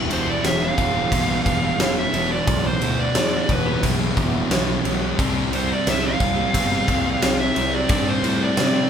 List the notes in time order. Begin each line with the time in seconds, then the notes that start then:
Already playing: E1 E2 B2 E3 G3 E4 G4
0.09 E2 B2 E3 G3 G4 C5, ride
0.30 D5
0.43 E1 E2 B2 E3 E5, snare, ride
0.60 E3 G3 G4 F5
0.77 E1 E2 B2 E3, muted clean electric guitar stroke, kick, ride
0.94 E3 G3 G4
1.11 B1 E2 B2 E3 G3 G4, kick, ride
1.28 E3 G3 G4
1.46 E1 E2 B2 E3 G3 G4, kick, ride
1.79 E1 E2 B2 E3 G3 E4 G4, snare, ride
1.96 E3 G3 E4 G4 E5
2.13 E1 E2 B2 E3 G3 E4, ride
2.17 G4
2.30 E3 G3 E4 G4 D5
2.47 B1 E2 B2 E3 G3 E4 G4, kick, ride
2.67 C5
2.81 D2 E2 B2 E3 G3 E4 G4, ride
3.00 D5
3.14 E2 B2 E3, snare, ride
3.32 E3 G3 E4 G4
3.49 E1 E2 B2 E3 B4, muted clean electric guitar stroke, kick, ride
3.66 E3 G3 E4 G4
3.83 B1 E2 B2 E3 G3 E4 G4, kick, ride
4.00 E3 G3 E4 G4
4.17 E1 E2 B2 E3 G3 E4 G4, kick, ride
4.50 B1 E2 B2 E3 G3 E4 G4, snare, ride
4.67 E3 G3 E4 G4
4.84 B1 E2 B2 E3 G3 E4 G4, ride
5.01 E3 G3 E4 G4
5.17 C2 C3 G3 C4 D4 G4, kick, ride
5.51 C3 G3 C4 D4 G4, ride
5.55 C5
5.73 D5
5.86 C2 C3 G3 C4 E5, snare, ride
6.02 C4 D4 G4
6.06 F5
6.20 C2 C3 G3 C4, muted clean electric guitar stroke, kick, ride
6.36 C4 D4 G4
6.53 G1 C3 G3 C4 D4 G4, kick, ride
6.70 C4 D4 G4
6.87 C2 C3 G3 C4 D4 G4, kick, ride
7.20 C2 C3 G3 C4 D4 G4, snare, ride
7.38 C4 D4 G4 E5
7.55 C2 C3 G3 C4 D4 G4, ride
7.72 C4 D4 G4 D5
7.89 G2 C3 G3 C4 D4 G4, kick, ride
8.10 C5
8.23 A2 C3 G3 C4 D4 G4, ride
8.43 D5
8.56 C3 G3 C4, snare, ride
8.73 C4 D4 G4